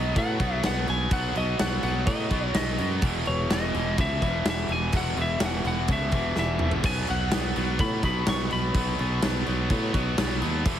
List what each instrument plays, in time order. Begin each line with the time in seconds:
Already playing: fingered electric bass B1, distorted electric guitar B2 F#3 B3, lead electric guitar D#5
0.15 fingered electric bass A2, distorted electric guitar B2 F#3 B3, lead electric guitar F#5, kick, crash
0.40 fingered electric bass B1, distorted electric guitar B2 F#3 B3, kick, crash
0.63 fingered electric bass B1, distorted electric guitar B2 F#3 B3, lead electric guitar F#5, snare, crash
0.87 fingered electric bass B1, distorted electric guitar B2 F#3 B3, lead electric guitar G#5, crash
1.11 fingered electric bass B1, distorted electric guitar B2 F#3 B3, lead electric guitar F#5, kick, crash
1.35 fingered electric bass B1, distorted electric guitar B2 F#3 B3, lead electric guitar D#5, crash
1.59 fingered electric bass B1, distorted electric guitar B2 F#3 B3, lead electric guitar F#5, snare, crash
1.83 fingered electric bass B1, distorted electric guitar B2 F#3 B3, lead electric guitar F#5, crash
2.07 fingered electric bass A2, distorted electric guitar B2 F#3 B3, lead electric guitar D#5, kick, crash
2.30 fingered electric bass B1, distorted electric guitar B2 F#3 B3, kick, crash
2.54 fingered electric bass B1, distorted electric guitar B2 F#3 B3, lead electric guitar D#5, snare, crash
2.78 fingered electric bass F#2, distorted electric guitar B2 F#3 B3, crash
3.02 fingered electric bass E1, distorted electric guitar E2 B2 E3, kick, crash
3.25 fingered electric bass E1, distorted electric guitar E2 B2 E3, lead electric guitar C#5, crash
3.50 fingered electric bass E1, distorted electric guitar E2 B2 E3, lead electric guitar D#5, snare, crash
3.73 fingered electric bass E1, distorted electric guitar E2 B2 E3, crash
3.97 fingered electric bass C#2, distorted electric guitar E2 B2 E3, lead electric guitar E5, kick, crash
4.21 fingered electric bass E1, distorted electric guitar E2 B2 E3, kick, crash
4.45 fingered electric bass E1, distorted electric guitar E2 B2 E3, snare, crash
4.50 lead electric guitar E5
4.68 fingered electric bass E1, distorted electric guitar E2 B2 E3, lead electric guitar G#5, crash
4.92 fingered electric bass E1, distorted electric guitar E2 B2 E3, kick, crash
4.97 lead electric guitar F#5
5.17 fingered electric bass E1, distorted electric guitar E2 B2 E3, crash
5.21 lead electric guitar E5
5.40 fingered electric bass E1, distorted electric guitar E2 B2 E3, snare, crash
5.45 lead electric guitar F#5
5.64 fingered electric bass E1, distorted electric guitar E2 B2 E3, lead electric guitar F#5, crash
5.88 fingered electric bass C#2, distorted electric guitar E2 B2 E3, kick, crash
5.92 lead electric guitar E5
6.12 fingered electric bass E1, distorted electric guitar E2 B2 E3, kick, crash
6.36 fingered electric bass E1, distorted electric guitar E2 B2 E3, lead electric guitar E5, snare
6.59 fingered electric bass E1, distorted electric guitar E2 B2 E3, mid tom
6.71 floor tom
6.83 fingered electric bass B1, distorted electric guitar B2 F#3 B3, lead electric guitar G#5, kick, crash
7.07 fingered electric bass B1, distorted electric guitar B2 F#3 B3, lead electric guitar F#5, crash
7.31 distorted electric guitar B2 F#3 B3, snare, crash
7.56 fingered electric bass B1, distorted electric guitar B2 F#3 B3, crash
7.79 fingered electric bass A2, distorted electric guitar B2 F#3 B3, lead electric guitar B5, kick, crash
8.03 fingered electric bass B1, distorted electric guitar B2 F#3 B3, lead electric guitar B5, kick, crash
8.26 fingered electric bass B1, distorted electric guitar B2 F#3 B3, lead electric guitar C#6, snare, crash
8.51 fingered electric bass B1, distorted electric guitar B2 F#3 B3, lead electric guitar B5, crash
8.74 fingered electric bass B1, distorted electric guitar B2 F#3 B3, kick, crash
8.99 fingered electric bass B1, distorted electric guitar B2 F#3 B3, crash
9.22 fingered electric bass B1, distorted electric guitar B2 F#3 B3, snare, crash
9.46 fingered electric bass B1, distorted electric guitar B2 F#3 B3, crash
9.70 fingered electric bass A2, distorted electric guitar B2 F#3 B3, kick, crash
9.93 fingered electric bass B1, distorted electric guitar B2 F#3 B3, kick, crash
10.18 fingered electric bass B1, distorted electric guitar B2 F#3 B3, snare, crash
10.41 fingered electric bass D#2, distorted electric guitar B2 F#3 B3, crash
10.65 fingered electric bass E1, distorted electric guitar E2 B2 E3, kick, crash